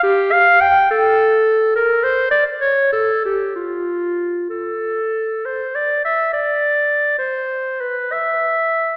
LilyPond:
\new Staff \with { instrumentName = "Clarinet" } { \time 6/8 \key a \phrygian \tempo 4. = 68 g'8 f''8 g''8 a'4. | bes'8 c''8 d''8 cis''8 a'8 g'8 | f'4. a'4. | \key e \phrygian c''8 d''8 e''8 d''4. |
c''4 b'8 e''4. | }